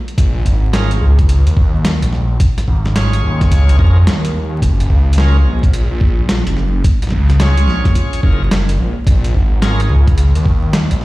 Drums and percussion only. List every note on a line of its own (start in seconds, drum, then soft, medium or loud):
0.08 closed hi-hat soft
0.18 kick loud
0.18 closed hi-hat medium
0.46 kick medium
0.46 closed hi-hat medium
0.73 snare loud
0.73 closed hi-hat medium
0.91 closed hi-hat medium
1.19 kick loud
1.19 closed hi-hat soft
1.29 closed hi-hat medium
1.47 closed hi-hat soft
1.57 kick loud
1.85 snare loud
1.85 closed hi-hat medium
2.02 closed hi-hat medium
2.13 snare soft
2.40 kick loud
2.40 closed hi-hat medium
2.58 snare soft
2.58 closed hi-hat medium
2.68 kick medium
2.86 snare medium
2.96 snare loud
2.96 closed hi-hat medium
3.13 closed hi-hat medium
3.41 kick loud
3.41 snare medium
3.41 closed hi-hat soft
3.51 kick medium
3.51 closed hi-hat medium
3.69 closed hi-hat medium
3.79 kick loud
4.07 snare loud
4.07 closed hi-hat medium
4.25 closed hi-hat medium
4.62 kick loud
4.62 closed hi-hat medium
4.80 closed hi-hat medium
4.90 kick medium
5.13 closed hi-hat medium
5.18 snare loud
5.63 kick loud
5.63 closed hi-hat soft
5.73 closed hi-hat medium
6.01 kick loud
6.29 snare loud
6.29 closed hi-hat medium
6.47 closed hi-hat medium
6.57 snare soft
6.84 kick loud
6.84 closed hi-hat medium
7.02 snare soft
7.02 closed hi-hat soft
7.04 snare soft
7.07 snare soft
7.09 snare soft
7.10 kick medium
7.10 snare soft
7.30 snare soft
7.30 closed hi-hat soft
7.40 snare loud
7.40 closed hi-hat medium
7.57 closed hi-hat medium
7.68 snare soft
7.85 kick loud
7.85 snare soft
7.85 closed hi-hat soft
7.95 kick medium
7.95 closed hi-hat medium
8.13 closed hi-hat soft
8.23 kick loud
8.51 snare loud
8.51 closed hi-hat medium
8.69 closed hi-hat medium
9.07 kick loud
9.07 closed hi-hat medium
9.24 closed hi-hat soft
9.34 kick medium
9.62 snare loud
9.62 closed hi-hat medium
9.80 closed hi-hat soft
10.08 kick loud
10.08 closed hi-hat soft
10.18 closed hi-hat medium
10.35 closed hi-hat soft
10.45 kick loud
10.73 snare loud
10.73 closed hi-hat medium
10.91 closed hi-hat medium
11.01 snare soft